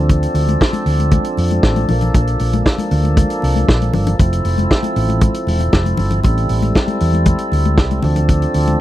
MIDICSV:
0, 0, Header, 1, 4, 480
1, 0, Start_track
1, 0, Key_signature, -1, "minor"
1, 0, Tempo, 511945
1, 88, Time_signature, 4, 2, 24, 8
1, 8257, End_track
2, 0, Start_track
2, 0, Title_t, "Tonewheel organ"
2, 0, Program_c, 0, 16
2, 0, Note_on_c, 0, 53, 69
2, 0, Note_on_c, 0, 60, 57
2, 0, Note_on_c, 0, 62, 60
2, 0, Note_on_c, 0, 69, 68
2, 1739, Note_off_c, 0, 60, 0
2, 1784, Note_on_c, 0, 58, 58
2, 3897, Note_off_c, 0, 62, 0
2, 3918, Note_off_c, 0, 58, 0
2, 3938, Note_on_c, 0, 60, 53
2, 3941, Note_on_c, 0, 64, 55
2, 5817, Note_off_c, 0, 69, 0
2, 5818, Note_off_c, 0, 53, 0
2, 5860, Note_on_c, 0, 69, 64
2, 5863, Note_on_c, 0, 55, 64
2, 7500, Note_off_c, 0, 64, 0
2, 7520, Note_off_c, 0, 55, 0
2, 7536, Note_on_c, 0, 53, 68
2, 7543, Note_on_c, 0, 62, 59
2, 8257, Note_off_c, 0, 53, 0
2, 8257, Note_off_c, 0, 60, 0
2, 8257, Note_off_c, 0, 62, 0
2, 8257, Note_off_c, 0, 69, 0
2, 8257, End_track
3, 0, Start_track
3, 0, Title_t, "Fingered electric bass"
3, 0, Program_c, 1, 33
3, 0, Note_on_c, 1, 38, 88
3, 235, Note_off_c, 1, 38, 0
3, 322, Note_on_c, 1, 38, 90
3, 518, Note_off_c, 1, 38, 0
3, 805, Note_on_c, 1, 38, 82
3, 1097, Note_off_c, 1, 38, 0
3, 1289, Note_on_c, 1, 41, 69
3, 1483, Note_off_c, 1, 41, 0
3, 1531, Note_on_c, 1, 33, 91
3, 1724, Note_off_c, 1, 33, 0
3, 1776, Note_on_c, 1, 34, 86
3, 1967, Note_off_c, 1, 34, 0
3, 2010, Note_on_c, 1, 34, 97
3, 2203, Note_off_c, 1, 34, 0
3, 2250, Note_on_c, 1, 34, 81
3, 2444, Note_off_c, 1, 34, 0
3, 2732, Note_on_c, 1, 38, 80
3, 3022, Note_off_c, 1, 38, 0
3, 3218, Note_on_c, 1, 36, 78
3, 3409, Note_off_c, 1, 36, 0
3, 3457, Note_on_c, 1, 34, 89
3, 3648, Note_off_c, 1, 34, 0
3, 3693, Note_on_c, 1, 31, 84
3, 3886, Note_off_c, 1, 31, 0
3, 3933, Note_on_c, 1, 29, 99
3, 4126, Note_off_c, 1, 29, 0
3, 4170, Note_on_c, 1, 29, 75
3, 4364, Note_off_c, 1, 29, 0
3, 4654, Note_on_c, 1, 33, 82
3, 4943, Note_off_c, 1, 33, 0
3, 5128, Note_on_c, 1, 28, 82
3, 5323, Note_off_c, 1, 28, 0
3, 5372, Note_on_c, 1, 29, 97
3, 5565, Note_off_c, 1, 29, 0
3, 5610, Note_on_c, 1, 31, 77
3, 5804, Note_off_c, 1, 31, 0
3, 5855, Note_on_c, 1, 33, 103
3, 6047, Note_off_c, 1, 33, 0
3, 6093, Note_on_c, 1, 33, 76
3, 6286, Note_off_c, 1, 33, 0
3, 6575, Note_on_c, 1, 40, 83
3, 6863, Note_off_c, 1, 40, 0
3, 7049, Note_on_c, 1, 38, 74
3, 7291, Note_off_c, 1, 38, 0
3, 7291, Note_on_c, 1, 36, 94
3, 7484, Note_off_c, 1, 36, 0
3, 7531, Note_on_c, 1, 38, 88
3, 7917, Note_off_c, 1, 38, 0
3, 8011, Note_on_c, 1, 38, 83
3, 8204, Note_off_c, 1, 38, 0
3, 8257, End_track
4, 0, Start_track
4, 0, Title_t, "Drums"
4, 88, Note_on_c, 9, 42, 56
4, 89, Note_on_c, 9, 36, 111
4, 91, Note_on_c, 9, 62, 38
4, 91, Note_on_c, 9, 64, 82
4, 182, Note_off_c, 9, 42, 0
4, 183, Note_off_c, 9, 36, 0
4, 184, Note_off_c, 9, 62, 0
4, 184, Note_off_c, 9, 64, 0
4, 213, Note_on_c, 9, 42, 46
4, 307, Note_off_c, 9, 42, 0
4, 325, Note_on_c, 9, 46, 66
4, 338, Note_on_c, 9, 62, 33
4, 419, Note_off_c, 9, 46, 0
4, 432, Note_off_c, 9, 62, 0
4, 454, Note_on_c, 9, 63, 83
4, 456, Note_on_c, 9, 42, 42
4, 547, Note_off_c, 9, 63, 0
4, 550, Note_off_c, 9, 42, 0
4, 570, Note_on_c, 9, 62, 36
4, 572, Note_on_c, 9, 36, 88
4, 579, Note_on_c, 9, 38, 97
4, 664, Note_off_c, 9, 62, 0
4, 665, Note_off_c, 9, 36, 0
4, 673, Note_off_c, 9, 38, 0
4, 686, Note_on_c, 9, 63, 81
4, 691, Note_on_c, 9, 42, 44
4, 780, Note_off_c, 9, 63, 0
4, 785, Note_off_c, 9, 42, 0
4, 806, Note_on_c, 9, 46, 71
4, 899, Note_off_c, 9, 46, 0
4, 931, Note_on_c, 9, 63, 52
4, 935, Note_on_c, 9, 42, 44
4, 1025, Note_off_c, 9, 63, 0
4, 1028, Note_off_c, 9, 42, 0
4, 1044, Note_on_c, 9, 42, 70
4, 1048, Note_on_c, 9, 36, 103
4, 1055, Note_on_c, 9, 62, 40
4, 1055, Note_on_c, 9, 63, 87
4, 1138, Note_off_c, 9, 42, 0
4, 1141, Note_off_c, 9, 36, 0
4, 1149, Note_off_c, 9, 62, 0
4, 1149, Note_off_c, 9, 63, 0
4, 1167, Note_on_c, 9, 42, 55
4, 1261, Note_off_c, 9, 42, 0
4, 1289, Note_on_c, 9, 62, 35
4, 1295, Note_on_c, 9, 46, 77
4, 1382, Note_off_c, 9, 62, 0
4, 1389, Note_off_c, 9, 46, 0
4, 1413, Note_on_c, 9, 42, 41
4, 1422, Note_on_c, 9, 63, 64
4, 1507, Note_off_c, 9, 42, 0
4, 1516, Note_off_c, 9, 63, 0
4, 1530, Note_on_c, 9, 36, 107
4, 1530, Note_on_c, 9, 38, 92
4, 1623, Note_off_c, 9, 38, 0
4, 1624, Note_off_c, 9, 36, 0
4, 1649, Note_on_c, 9, 42, 41
4, 1657, Note_on_c, 9, 63, 71
4, 1742, Note_off_c, 9, 42, 0
4, 1751, Note_off_c, 9, 63, 0
4, 1768, Note_on_c, 9, 46, 51
4, 1769, Note_on_c, 9, 64, 77
4, 1862, Note_off_c, 9, 46, 0
4, 1863, Note_off_c, 9, 64, 0
4, 1883, Note_on_c, 9, 42, 45
4, 1897, Note_on_c, 9, 64, 63
4, 1977, Note_off_c, 9, 42, 0
4, 1990, Note_off_c, 9, 64, 0
4, 2010, Note_on_c, 9, 42, 60
4, 2011, Note_on_c, 9, 36, 105
4, 2015, Note_on_c, 9, 62, 35
4, 2015, Note_on_c, 9, 64, 80
4, 2104, Note_off_c, 9, 42, 0
4, 2105, Note_off_c, 9, 36, 0
4, 2108, Note_off_c, 9, 62, 0
4, 2108, Note_off_c, 9, 64, 0
4, 2131, Note_on_c, 9, 42, 41
4, 2225, Note_off_c, 9, 42, 0
4, 2245, Note_on_c, 9, 46, 68
4, 2261, Note_on_c, 9, 62, 35
4, 2339, Note_off_c, 9, 46, 0
4, 2354, Note_off_c, 9, 62, 0
4, 2374, Note_on_c, 9, 42, 48
4, 2378, Note_on_c, 9, 63, 85
4, 2467, Note_off_c, 9, 42, 0
4, 2472, Note_off_c, 9, 63, 0
4, 2492, Note_on_c, 9, 36, 96
4, 2494, Note_on_c, 9, 38, 104
4, 2585, Note_off_c, 9, 36, 0
4, 2588, Note_off_c, 9, 38, 0
4, 2610, Note_on_c, 9, 63, 83
4, 2617, Note_on_c, 9, 42, 48
4, 2704, Note_off_c, 9, 63, 0
4, 2711, Note_off_c, 9, 42, 0
4, 2728, Note_on_c, 9, 46, 64
4, 2822, Note_off_c, 9, 46, 0
4, 2846, Note_on_c, 9, 63, 57
4, 2857, Note_on_c, 9, 42, 48
4, 2940, Note_off_c, 9, 63, 0
4, 2951, Note_off_c, 9, 42, 0
4, 2972, Note_on_c, 9, 36, 107
4, 2973, Note_on_c, 9, 42, 74
4, 2976, Note_on_c, 9, 62, 36
4, 2976, Note_on_c, 9, 63, 79
4, 3066, Note_off_c, 9, 36, 0
4, 3066, Note_off_c, 9, 42, 0
4, 3070, Note_off_c, 9, 62, 0
4, 3070, Note_off_c, 9, 63, 0
4, 3094, Note_on_c, 9, 42, 49
4, 3188, Note_off_c, 9, 42, 0
4, 3208, Note_on_c, 9, 62, 33
4, 3223, Note_on_c, 9, 46, 76
4, 3302, Note_off_c, 9, 62, 0
4, 3317, Note_off_c, 9, 46, 0
4, 3338, Note_on_c, 9, 63, 69
4, 3345, Note_on_c, 9, 42, 40
4, 3432, Note_off_c, 9, 63, 0
4, 3438, Note_off_c, 9, 42, 0
4, 3455, Note_on_c, 9, 36, 106
4, 3458, Note_on_c, 9, 38, 92
4, 3549, Note_off_c, 9, 36, 0
4, 3552, Note_off_c, 9, 38, 0
4, 3578, Note_on_c, 9, 42, 47
4, 3582, Note_on_c, 9, 63, 70
4, 3671, Note_off_c, 9, 42, 0
4, 3675, Note_off_c, 9, 63, 0
4, 3689, Note_on_c, 9, 62, 37
4, 3689, Note_on_c, 9, 64, 82
4, 3696, Note_on_c, 9, 46, 48
4, 3783, Note_off_c, 9, 62, 0
4, 3783, Note_off_c, 9, 64, 0
4, 3790, Note_off_c, 9, 46, 0
4, 3812, Note_on_c, 9, 42, 48
4, 3815, Note_on_c, 9, 64, 77
4, 3906, Note_off_c, 9, 42, 0
4, 3909, Note_off_c, 9, 64, 0
4, 3931, Note_on_c, 9, 42, 56
4, 3933, Note_on_c, 9, 36, 109
4, 3939, Note_on_c, 9, 62, 35
4, 3939, Note_on_c, 9, 64, 73
4, 4025, Note_off_c, 9, 42, 0
4, 4027, Note_off_c, 9, 36, 0
4, 4033, Note_off_c, 9, 62, 0
4, 4033, Note_off_c, 9, 64, 0
4, 4056, Note_on_c, 9, 42, 49
4, 4150, Note_off_c, 9, 42, 0
4, 4169, Note_on_c, 9, 46, 67
4, 4178, Note_on_c, 9, 62, 34
4, 4262, Note_off_c, 9, 46, 0
4, 4271, Note_off_c, 9, 62, 0
4, 4294, Note_on_c, 9, 63, 89
4, 4302, Note_on_c, 9, 42, 52
4, 4388, Note_off_c, 9, 63, 0
4, 4396, Note_off_c, 9, 42, 0
4, 4414, Note_on_c, 9, 36, 88
4, 4416, Note_on_c, 9, 38, 92
4, 4508, Note_off_c, 9, 36, 0
4, 4510, Note_off_c, 9, 38, 0
4, 4527, Note_on_c, 9, 63, 77
4, 4536, Note_on_c, 9, 42, 46
4, 4621, Note_off_c, 9, 63, 0
4, 4629, Note_off_c, 9, 42, 0
4, 4650, Note_on_c, 9, 46, 63
4, 4744, Note_off_c, 9, 46, 0
4, 4770, Note_on_c, 9, 63, 59
4, 4776, Note_on_c, 9, 42, 45
4, 4864, Note_off_c, 9, 63, 0
4, 4870, Note_off_c, 9, 42, 0
4, 4886, Note_on_c, 9, 42, 69
4, 4891, Note_on_c, 9, 36, 116
4, 4897, Note_on_c, 9, 63, 84
4, 4980, Note_off_c, 9, 42, 0
4, 4984, Note_off_c, 9, 36, 0
4, 4991, Note_off_c, 9, 63, 0
4, 5010, Note_on_c, 9, 42, 57
4, 5104, Note_off_c, 9, 42, 0
4, 5127, Note_on_c, 9, 62, 30
4, 5139, Note_on_c, 9, 46, 77
4, 5221, Note_off_c, 9, 62, 0
4, 5232, Note_off_c, 9, 46, 0
4, 5250, Note_on_c, 9, 63, 71
4, 5256, Note_on_c, 9, 42, 38
4, 5344, Note_off_c, 9, 63, 0
4, 5350, Note_off_c, 9, 42, 0
4, 5370, Note_on_c, 9, 62, 38
4, 5372, Note_on_c, 9, 38, 104
4, 5373, Note_on_c, 9, 36, 103
4, 5464, Note_off_c, 9, 62, 0
4, 5466, Note_off_c, 9, 38, 0
4, 5467, Note_off_c, 9, 36, 0
4, 5492, Note_on_c, 9, 63, 69
4, 5494, Note_on_c, 9, 42, 45
4, 5586, Note_off_c, 9, 63, 0
4, 5588, Note_off_c, 9, 42, 0
4, 5602, Note_on_c, 9, 62, 35
4, 5602, Note_on_c, 9, 64, 83
4, 5616, Note_on_c, 9, 46, 48
4, 5695, Note_off_c, 9, 62, 0
4, 5695, Note_off_c, 9, 64, 0
4, 5709, Note_off_c, 9, 46, 0
4, 5726, Note_on_c, 9, 64, 69
4, 5734, Note_on_c, 9, 42, 48
4, 5820, Note_off_c, 9, 64, 0
4, 5828, Note_off_c, 9, 42, 0
4, 5846, Note_on_c, 9, 64, 71
4, 5853, Note_on_c, 9, 42, 60
4, 5855, Note_on_c, 9, 36, 113
4, 5939, Note_off_c, 9, 64, 0
4, 5947, Note_off_c, 9, 42, 0
4, 5949, Note_off_c, 9, 36, 0
4, 5977, Note_on_c, 9, 42, 42
4, 6071, Note_off_c, 9, 42, 0
4, 6086, Note_on_c, 9, 46, 65
4, 6088, Note_on_c, 9, 62, 37
4, 6179, Note_off_c, 9, 46, 0
4, 6182, Note_off_c, 9, 62, 0
4, 6210, Note_on_c, 9, 63, 80
4, 6216, Note_on_c, 9, 42, 44
4, 6304, Note_off_c, 9, 63, 0
4, 6310, Note_off_c, 9, 42, 0
4, 6329, Note_on_c, 9, 62, 34
4, 6333, Note_on_c, 9, 36, 91
4, 6337, Note_on_c, 9, 38, 94
4, 6423, Note_off_c, 9, 62, 0
4, 6427, Note_off_c, 9, 36, 0
4, 6431, Note_off_c, 9, 38, 0
4, 6448, Note_on_c, 9, 42, 43
4, 6449, Note_on_c, 9, 63, 78
4, 6542, Note_off_c, 9, 42, 0
4, 6543, Note_off_c, 9, 63, 0
4, 6567, Note_on_c, 9, 46, 65
4, 6661, Note_off_c, 9, 46, 0
4, 6690, Note_on_c, 9, 63, 61
4, 6697, Note_on_c, 9, 42, 44
4, 6783, Note_off_c, 9, 63, 0
4, 6791, Note_off_c, 9, 42, 0
4, 6803, Note_on_c, 9, 42, 65
4, 6808, Note_on_c, 9, 36, 115
4, 6814, Note_on_c, 9, 63, 85
4, 6896, Note_off_c, 9, 42, 0
4, 6902, Note_off_c, 9, 36, 0
4, 6907, Note_off_c, 9, 63, 0
4, 6923, Note_on_c, 9, 42, 59
4, 7017, Note_off_c, 9, 42, 0
4, 7048, Note_on_c, 9, 62, 32
4, 7059, Note_on_c, 9, 46, 65
4, 7142, Note_off_c, 9, 62, 0
4, 7153, Note_off_c, 9, 46, 0
4, 7175, Note_on_c, 9, 42, 41
4, 7179, Note_on_c, 9, 63, 71
4, 7268, Note_off_c, 9, 42, 0
4, 7272, Note_off_c, 9, 63, 0
4, 7290, Note_on_c, 9, 38, 92
4, 7291, Note_on_c, 9, 36, 118
4, 7384, Note_off_c, 9, 38, 0
4, 7385, Note_off_c, 9, 36, 0
4, 7413, Note_on_c, 9, 42, 41
4, 7422, Note_on_c, 9, 63, 67
4, 7507, Note_off_c, 9, 42, 0
4, 7516, Note_off_c, 9, 63, 0
4, 7524, Note_on_c, 9, 62, 39
4, 7524, Note_on_c, 9, 64, 74
4, 7535, Note_on_c, 9, 46, 44
4, 7618, Note_off_c, 9, 62, 0
4, 7618, Note_off_c, 9, 64, 0
4, 7629, Note_off_c, 9, 46, 0
4, 7649, Note_on_c, 9, 42, 53
4, 7651, Note_on_c, 9, 64, 68
4, 7743, Note_off_c, 9, 42, 0
4, 7745, Note_off_c, 9, 64, 0
4, 7771, Note_on_c, 9, 36, 105
4, 7772, Note_on_c, 9, 42, 64
4, 7773, Note_on_c, 9, 64, 77
4, 7865, Note_off_c, 9, 36, 0
4, 7866, Note_off_c, 9, 42, 0
4, 7867, Note_off_c, 9, 64, 0
4, 7894, Note_on_c, 9, 42, 44
4, 7987, Note_off_c, 9, 42, 0
4, 8008, Note_on_c, 9, 46, 67
4, 8017, Note_on_c, 9, 62, 32
4, 8102, Note_off_c, 9, 46, 0
4, 8111, Note_off_c, 9, 62, 0
4, 8132, Note_on_c, 9, 42, 48
4, 8136, Note_on_c, 9, 63, 82
4, 8225, Note_off_c, 9, 42, 0
4, 8230, Note_off_c, 9, 63, 0
4, 8257, End_track
0, 0, End_of_file